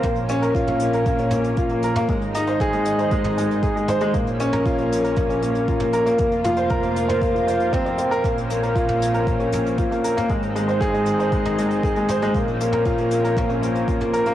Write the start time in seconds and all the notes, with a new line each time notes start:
Already playing: F3
0.03 A#1 A#3 C#4, kick, closed hi-hat, mid tom
0.15 closed hi-hat
0.28 C#4, closed hi-hat
0.42 A#4, closed hi-hat
0.55 F4, kick, closed hi-hat
0.67 A#3, closed hi-hat, mid tom
0.80 closed hi-hat
0.93 A#4, closed hi-hat
1.06 A#3, kick, closed hi-hat
1.18 C#4, closed hi-hat
1.31 A#3, closed hi-hat, mid tom
1.44 closed hi-hat
1.57 F4, kick, closed hi-hat
1.69 A#3, closed hi-hat
1.82 A#4, closed hi-hat
1.96 A#3, closed hi-hat, mid tom
2.08 G#1 D#3 G#3 D#4, kick, closed hi-hat
2.21 closed hi-hat
2.34 D#4, closed hi-hat
2.47 C5, closed hi-hat
2.60 G#4, kick, closed hi-hat, mid tom
2.73 G#3, closed hi-hat
2.85 closed hi-hat
2.99 C5, closed hi-hat
3.11 G#3, kick, closed hi-hat
3.24 D#4, closed hi-hat, mid tom
3.37 G#3, closed hi-hat
3.51 closed hi-hat
3.63 G#4, kick, closed hi-hat
3.76 G#3, closed hi-hat
3.88 C5, closed hi-hat, mid tom
4.01 G#3, closed hi-hat
4.14 A#1 F3 A#3 C#4, kick, closed hi-hat
4.27 closed hi-hat
4.39 C#4, closed hi-hat
4.53 A#4, closed hi-hat, mid tom
4.66 F4, kick, closed hi-hat
4.78 A#3, closed hi-hat
4.92 closed hi-hat
5.04 A#4, closed hi-hat
5.16 A#3, kick, closed hi-hat, mid tom
5.29 C#4, closed hi-hat
5.42 A#3, closed hi-hat
5.55 closed hi-hat
5.68 F4, kick, closed hi-hat
5.80 A#3, closed hi-hat, mid tom
5.93 A#4, closed hi-hat
6.06 A#3, closed hi-hat
6.18 F1 A#3 F4, kick, closed hi-hat
6.32 closed hi-hat
6.44 F4, closed hi-hat, mid tom
6.57 C5, closed hi-hat
6.69 A#4, kick, closed hi-hat
6.83 A#3, closed hi-hat
6.96 closed hi-hat
7.09 C5, closed hi-hat, mid tom
7.22 A#3, kick, closed hi-hat
7.34 F4, closed hi-hat
7.47 C5, closed hi-hat
7.60 closed hi-hat
7.73 C4, kick, closed hi-hat, mid tom
7.86 C4, closed hi-hat
7.98 C4, closed hi-hat
8.11 A#4, closed hi-hat
8.24 A#1 A#3 C4 C#4, kick, closed hi-hat, mid tom
8.38 closed hi-hat
8.50 A#3, closed hi-hat
8.63 A#4, closed hi-hat
8.75 F4, kick, closed hi-hat
8.88 A#3, closed hi-hat, mid tom
9.02 closed hi-hat
9.14 A#4, closed hi-hat
9.27 A#3, kick, closed hi-hat
9.40 C#4, closed hi-hat
9.52 A#3, closed hi-hat, mid tom
9.66 closed hi-hat
9.78 F4, kick, closed hi-hat
9.91 A#3, closed hi-hat
10.04 A#4, closed hi-hat
10.17 A#3, closed hi-hat, mid tom
10.29 G#1 D#3 G#3 D#4, kick, closed hi-hat
10.43 closed hi-hat
10.55 G#3, closed hi-hat
10.68 C5, closed hi-hat
10.80 G#4, kick, closed hi-hat, mid tom
10.94 G#3, closed hi-hat
11.06 closed hi-hat
11.19 C5, closed hi-hat
11.32 G#3, kick, closed hi-hat
11.45 D#4, closed hi-hat, mid tom
11.58 G#3, closed hi-hat
11.71 closed hi-hat
11.83 G#4, kick, closed hi-hat
11.96 G#3, closed hi-hat
12.09 C5, closed hi-hat, mid tom
12.22 G#3, closed hi-hat
12.33 A#1 F3 A#3 C#4, kick, closed hi-hat
12.48 closed hi-hat
12.60 A#3, closed hi-hat
12.72 A#4, closed hi-hat, mid tom
12.85 F4, kick, closed hi-hat
12.98 A#3, closed hi-hat
13.11 closed hi-hat
13.24 A#4, closed hi-hat
13.37 A#3, kick, closed hi-hat, mid tom
13.50 C#4, closed hi-hat
13.62 A#3, closed hi-hat
13.75 closed hi-hat
13.88 F4, kick, closed hi-hat
14.00 A#3, closed hi-hat, mid tom
14.13 A#4, closed hi-hat
14.26 A#3, closed hi-hat